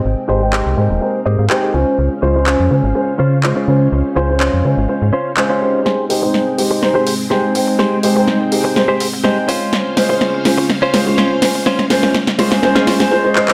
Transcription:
<<
  \new Staff \with { instrumentName = "String machine" } { \time 4/4 \key aes \major \tempo 4 = 124 <c' bes' g''>2.~ <c' bes' g''>8 <des' c'' f''>8~ | <des' c'' f''>1~ | <des' c'' f''>1 | <aes c' g''>1~ |
<aes c' g''>2.~ <aes c' g''>8 <des' c'' f''>8~ | <des' c'' f''>1~ | <des' c'' f''>2. r4 | }
  \new Staff \with { instrumentName = "Clean electric guitar" } { \time 4/4 \key aes \major << { r2 r8 ees''16 f''16 g''8 aes''8 | r1 | r1 | r1 |
r1 | r1 | r1 | } \\ { r8 <g' aes' c''>16 r16 <g' aes' c''>8 r4 <g' aes' c''>8 r16 <g' aes' c''>16 <des' f' c''>8~ | <des' f' c''>16 r16 <des' f' c''>16 r16 <des' f' c''>8 r4 <des' f' c''>8 r16 <des' f' c''>8. | r8 <des' f' c''>16 r16 <des' f' c''>8 r4 <des' f' c''>8 r16 <des' f' c''>8. | <g' aes' c''>8 r4. r16 <g' aes' c''>16 r8 <g' aes' c''>16 r8. |
<g' aes' c''>8 r4. r16 <g' aes' c''>16 r8 <g' aes' c''>16 r16 <des' f' c''>8~ | <des' f' c''>8 r4. r16 <des' f' c''>16 r8 <des' f' c''>16 r8. | <des' f' c''>8 r4. r16 <des' f' aes'>16 r4. | } >> }
  \new Staff \with { instrumentName = "Grand piano" } { \time 4/4 \key aes \major <aes ees' c'' g''>8 <aes ees' g' c''>16 <aes ees' c'' g''>8. <aes ees' g' c''>8 <aes ees' g' c''>16 r8. <aes ees' g' c''>8 <aes des' f' c''>8~ | <aes des' f' c''>8 <aes des' f' c''>16 <aes des' f' c''>8. <aes des' f' c''>8 <aes des' f' c''>16 r8. <aes des' f' c''>8 <aes des' f' c''>8~ | <aes des' f' c''>8 <aes des' f' c''>16 <aes des' f' c''>8. <aes des' f' c''>8 <aes des' f' c''>16 r8. <aes des' f' c''>8 <aes ees' g' c''>8~ | <aes ees' g' c''>8 <aes ees' g' c''>16 <aes ees' c'' g''>8. <aes ees' g' c''>8 <aes ees' g' c''>16 r8. <aes ees' g' c''>8 <aes ees' c'' g''>8~ |
<aes ees' c'' g''>8 <aes ees' g' c''>16 <aes ees' c'' g''>8. <aes ees' g' c''>8 <aes ees' g' c''>16 r8. <aes ees' g' c''>8 <aes des' f' c''>8 | r8 <aes des' f' c''>16 <aes des' f' c''>8. <aes des' f' c''>8 r8 <aes des' f' c''>16 <aes des' f' c''>8. <aes des' f' c''>8 | r8 <aes des' f' c''>16 <aes des' f' c''>16 r8 <aes des' f' c''>16 <aes des' f' c''>16 <aes des' f' c''>16 <aes des' f' c''>16 <aes des' f' c''>16 <aes des' f' c''>16 <aes des' f' c''>16 <aes des' f' c''>16 <aes des' f' c''>16 <aes des' f' c''>16 | }
  \new Staff \with { instrumentName = "FM bass" } { \clef bass \time 4/4 \key aes \major aes,,16 r16 aes,,8. c,16 aes,16 ees,,16 r8 aes,16 aes,16 r8 des,16 r16 | des,16 r16 des,8. f,16 des16 aes,,16 r8 des8. r16 des8 | des,16 r16 des,8. f,16 des16 aes,,16 r16 aes,16 r4. | aes,,16 r16 aes,,8. c,16 aes,16 ees,,16 r8 aes,8. r16 aes,8 |
aes,,16 r16 aes,,8. c,16 aes,16 r8. aes,16 aes,16 r8 des,16 r16 | des,16 r16 des,8. f,16 des16 r8. des8. r16 des8 | r8 des,8. f,16 des16 r2 r16 | }
  \new DrumStaff \with { instrumentName = "Drums" } \drummode { \time 4/4 r4 hc4 r4 hc4 | r4 hc4 r4 hc4 | r4 hc4 r4 hc4 | sn8 hho8 sn8 hho8 sn8 hho8 sn8 hho8 |
sn8 hho8 sn8 hho8 sn8 hho8 sn8 hho8 | sn8 <hho sn>8 sn8 <hho sn>8 sn8 <hho sn>8 sn8 <hho sn>8 | sn16 sn16 <hho sn>16 sn16 sn16 sn16 <hho sn>16 sn16 sn16 sn16 <hho sn>16 sn16 r8 hc16 hc16 | }
>>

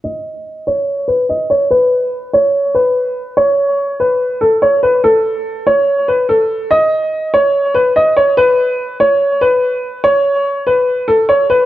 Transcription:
\new Staff \with { instrumentName = "Upright piano" } { \time 4/4 \key b \mixolydian \tempo 4 = 144 dis''4. cis''4 b'8 dis''8 cis''8 | b'4. cis''4 b'4. | cis''4. b'4 a'8 cis''8 b'8 | a'4. cis''4 b'8 a'4 |
dis''4. cis''4 b'8 dis''8 cis''8 | b'4. cis''4 b'4. | cis''4. b'4 a'8 cis''8 b'8 | }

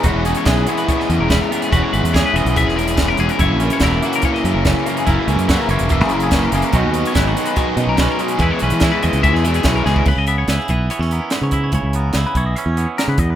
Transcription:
<<
  \new Staff \with { instrumentName = "Clean electric guitar" } { \time 4/4 \key cis \dorian \tempo 4 = 144 b'8 gis'16 cis''16 b'8 gis'16 b'16 cis''16 dis''8 ais'16 b'16 ais'8 gis'16 | b'16 cis''16 b'8 gis'16 b'16 dis''8 e''16 gis'16 ais'16 gis'8 ais'16 gis'16 ais'16 | cis''8 ais'16 cis''16 ais'8 fis'16 ais'16 cis''16 dis''8 ais'16 b'16 ais'8 gis'16 | ais'16 b'16 ais'8 fis'16 ais'16 cis''8 e''16 gis'16 ais'16 gis'8 ais'16 gis'16 ais'16 |
b'8 gis'16 cis''16 b'8 gis'16 b'16 cis''16 dis''8 ais'16 b'16 ais'8 gis'16 | b'16 cis''16 b'8 gis'16 b'16 dis''8 e''16 gis'16 ais'16 gis'8 ais'16 gis'16 ais'16 | b'16 dis''16 e''16 cis''16 b'16 gis'16 b'8 cis''8 ais'8 b'16 cis''16 e''16 cis''16 | cis''8 ais'8 gis'16 b'16 cis''16 dis''16 e''16 cis''8 r16 ais'16 b'16 dis''16 b'16 | }
  \new Staff \with { instrumentName = "Clean electric guitar" } { \time 4/4 \key cis \dorian << { fis'4 gis'8 b2 b8 | fis'4 gis'8 b2~ b8 | e'8 cis'8 e'8 ais4. cis'8 ais8 | e'8 cis'8 e'8 ais4. cis'8 ais8 |
<dis gis cis' fis'>8 cis'8 e'16 fis'16 gis4. cis'8 gis8 | e'16 fis'16 cis'8 e'8 gis4. cis'8 gis8 | r8 b8 e'4 b16 cis'16 b4 e'8~ | e'8 b8 e'4 cis'8 b4 r8 | } \\ { e,4 e4. e,4. | e,4 e4. e,4 e,8 | fis,4 fis4. cis4. | fis,4 fis4. cis4. |
b,4 dis4. fis,4. | e,4 e4. b,4. | cis4. e4. gis,4 | cis4. e4. gis,8 e,8 | } >> }
  \new Staff \with { instrumentName = "Overdriven electric guitar" } { \time 4/4 \key cis \dorian <e gis cis' e'>8 <gis cis' e'>8 <e gis cis' e'>8 <gis cis' e'>8 <e gis cis' e'>8 <gis cis' e'>8 <e gis cis' e'>8 <gis cis' e'>8 | <e gis cis' e'>8 <gis cis' e'>8 <e gis cis' e'>8 <gis cis' e'>8 <e gis cis' e'>8 <gis cis' e'>8 <e gis cis' e'>8 <gis cis' e'>8 | <fis, cis e ais e'>8 <e ais e'>8 <fis, cis e ais e'>8 <e ais e'>8 <cis e ais e'>8 <e ais e'>8 <fis, cis e ais e'>8 <e ais e'>8 | <fis, cis e ais e'>8 <e ais e'>8 <fis, cis e ais e'>8 <e ais e'>8 <cis e ais e'>8 <e ais e'>8 <fis, cis e ais e'>8 <e ais e'>8 |
<b, fis b dis'>8 <fis b dis'>8 <b, fis b dis'>8 <fis b dis'>8 <b, fis b dis'>8 <fis b dis'>8 <b, fis b dis'>8 <fis b dis'>8 | <e gis b e'>8 <gis b e'>8 <e gis b e'>8 <gis b e'>8 <e gis b e'>8 <gis b e'>8 <e gis b e'>8 <gis b e'>8 | r1 | r1 | }
  \new Staff \with { instrumentName = "Fingered electric bass" } { \clef bass \time 4/4 \key cis \dorian e,,16 e,,8 r16 b,,8 r4 e,16 e,,8 r8. | e,,16 r16 gis,,16 e,8 r16 e,,16 b,,8 e,,4~ e,,16 e,,16 r16 | fis,,16 ais,,8 r16 e,,8 r4 fis,16 fis,,8 r8. | fis,,16 r16 cis,16 fis,8 r16 fis,,16 e,,8 fis,,4~ fis,,16 fis,,16 r16 |
b,,16 dis,8 r16 gis,,8 r4 b,16 b,,8 r8. | e,16 r16 b,,16 e8 r16 e,16 cis,8 e,8. b,,8 cis,8 | cis,16 cis,8. cis,16 r16 b,,8 r16 e,8 r8 cis8. | cis,16 cis,8. cis,16 r16 b,,8 r16 e,8 r8 cis16 e,8 | }
  \new DrumStaff \with { instrumentName = "Drums" } \drummode { \time 4/4 <hh bd>8 hh16 hh16 <hh bd sn>8 hh16 hh16 <hh bd>16 sn16 hh8 <hh bd sn>8 hh16 hh16 | <hh bd>8 hh16 hh16 <hh bd sn>8 hh16 hh16 <hh bd>16 sn16 hh16 hh16 <hh bd sn>8 hh16 hh16 | <hh bd>8 hh16 hh16 <hh bd sn>8 hh16 hh16 <hh bd>16 sn16 hh8 <hh bd sn>8 hh16 hh16 | <hh bd>8 hh16 hh16 <hh bd sn>8 hh16 hh16 <hh bd>16 sn16 hh16 hh16 <hh bd sn>8 hh16 hh16 |
<hh bd>8 hh16 hh16 <hh bd sn>8 hh16 hh16 <hh bd>8 hh8 <hh bd sn>8 hh16 hh16 | <hh bd>8 hh16 hh16 <hh bd sn>8 hh16 hh16 <hh bd>16 sn16 hh16 hh16 <hh bd sn>8 sn16 bd16 | <cymc bd>8 hh8 <hh sn>8 <hh bd>8 hh16 sn16 hh8 <hh sn>8 <hh bd>8 | <hh bd>8 hh8 <hh sn>8 <hh bd>8 hh8 hh8 <hh sn>8 <hh bd>8 | }
>>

